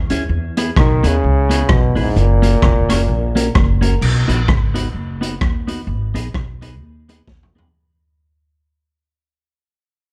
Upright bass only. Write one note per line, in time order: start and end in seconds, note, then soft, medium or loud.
0.11 0.27 F#2 medium
0.29 0.69 E2 medium
0.77 1.00 B1 loud
1.04 1.20 D#2 medium
1.24 1.63 C#2 medium
1.69 1.92 B1 loud
1.97 2.13 A#1 medium
2.16 2.56 F#1 loud
2.62 2.85 E1 loud
2.89 3.06 F#1 medium
3.08 3.48 A#1 medium
3.55 3.95 F#1 loud
4.01 4.25 B1 loud
4.29 4.45 A#1 medium
4.48 4.88 G#1 medium
4.94 5.34 F#1 medium
5.41 5.88 D#2 loud
5.87 6.10 G#1 loud
6.14 6.31 A#1 medium
6.34 6.80 B1 medium
6.80 7.20 D#2 medium
7.27 7.67 D#2 medium